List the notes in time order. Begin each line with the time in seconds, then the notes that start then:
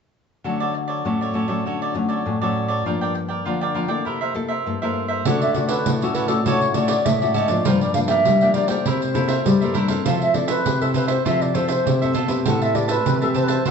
0.44 D3 F#3 A3 C#4 F#4 A4 C#5 D5
0.60 A4 C#5 D5
0.74 muted cavaquinho stroke
0.88 A4 C#5 D5
1.05 A2 F#3 A3 C#4 F#4 A4 C#5 D5
1.21 A4 C#5 D5
1.33 F#3 A3 C#4 F#4 A4 C#5 D5
1.48 F#3 A3 C#4 A4 C#5 D5
1.66 D3 F#4 A4 C#5 D5
1.82 A4 C#5 D5
1.94 F#3 A3 C#4, muted cavaquinho stroke
2.09 A4 C#5 D5
2.26 A2 F#3 A3 C#4
2.41 F#3 A3 C#4 A4 C#5 D5
2.68 A4 C#5 D5
2.85 G2 F3 A#3 D4 F4 A#4 D5 G5
3.01 A#4 D5 G5
3.15 muted cavaquinho stroke
3.28 A#4 D5 G5
3.45 D3 F3 A#3 D4 F4 A#4 D5 G5
3.61 A#4 D5 G5
3.75 F3 A#3 D4 F4 A#4 D5 G5
3.88 A#3 E4 A4 A#4 D5 G5
4.05 C3 E4 A#4 C5 E5
4.21 A#4 C5 E5
4.34 A#3 E4 A4, muted cavaquinho stroke
4.48 A#4 C5 E5
4.66 G2 A#3 E4 A4
4.82 A#3 E4 A4 A#4 C5 E5
5.08 A#4 C5 E5
5.25 D3 A3 C#4 F#4 A4 C#5 D5 F#5, pandeiro
5.41 A4 C#5 D5 E5, pandeiro
5.54 A3 C#4 F#4 D5, muted cavaquinho stroke, pandeiro
5.68 A4 B4 C#5 D5, pandeiro
5.86 A2, pandeiro
6.01 A3 C#4 F#4 A4 C#5 D5, pandeiro
6.14 F#4 A4 B4 C#5 D5, pandeiro
6.28 A3 C#4 F#4 A4 C#5 D5, pandeiro
6.45 A2 D3 A3 C#4 F#4 A4 C#5 D5, pandeiro
6.62 pandeiro
6.74 A3 C#4 F#4 A4 C#5 D5, pandeiro
6.88 A4 C#5 D5, pandeiro
7.05 A2 E5, pandeiro
7.22 A3 C#4 F#4 A4 C#5 D5, pandeiro
7.34 G#2 F#4 A4 C#5 D5, pandeiro
7.48 F3 A#3 D4 A4 C#5 D5, pandeiro
7.65 G2 F4 A#4 C5 D5 G5, pandeiro
7.81 A#4 D5 G5, pandeiro
7.94 F3 A#3 D4 F5, muted cavaquinho stroke, pandeiro
8.07 A#4 D5 E5 G5, pandeiro
8.25 D3 G3, pandeiro
8.41 F3 A#3 D4 A#4 D5 G5, pandeiro
8.54 F4 A#4 D5 G5, pandeiro
8.68 A#3 E4 A4 A#4 C5 D5 G5, pandeiro
8.86 C3 E4 A#4 C5 E5, pandeiro
9.02 muted cavaquinho stroke, pandeiro
9.14 A#3 E4 A4 A#4 C5 E5, pandeiro
9.28 A#4 C5 E5, pandeiro
9.45 G2 G3, pandeiro
9.61 A#3 E4 A4 A#4 C5 E5, pandeiro
9.74 D3 E4 A#4 C5 E5, pandeiro
9.88 C4 E4 A4 A#4 C5 E5, pandeiro
10.05 F3 F4 A4 C5 E5 F5, pandeiro
10.21 A4 C5 E5, pandeiro
10.34 C4 E4 A4 D5, muted cavaquinho stroke, pandeiro
10.47 A4 B4 C5 E5, pandeiro
10.66 C3, pandeiro
10.81 C4 E4 A4 C5 E5, pandeiro
10.94 F4 A4 B4 C5 E5, pandeiro
11.07 A4 C5 E5, pandeiro
11.25 C3 F3 C4 E4 F4 A4 C5 E5, pandeiro
11.42 D5, muted cavaquinho stroke, pandeiro
11.54 C4 E4 F4 A4 C5 E5, pandeiro
11.68 A4 C5 E5, pandeiro
11.86 C3, pandeiro
12.02 C4 E4 A4 C5 E5, pandeiro
12.14 B2 F4 A4 C5 E5, pandeiro
12.28 C4 G4 A4 B4 C5 E5, pandeiro
12.45 A2 A3 G4 C5 E5 F#5 A5, pandeiro
12.62 C5 E5 A5, pandeiro
12.74 C4 G4 B4 D5, muted cavaquinho stroke, pandeiro
12.88 B4 C5 E5 A5, pandeiro
13.06 C3 E3, pandeiro
13.21 C4 G4 A4 B4 C5 E5 A5, pandeiro
13.34 G4 C5 E5 A5, pandeiro
13.43 B4
13.48 C5 E5 A5, pandeiro
13.65 D3 A3 C4 D4 F#4 A4 C5 D5 F#5, pandeiro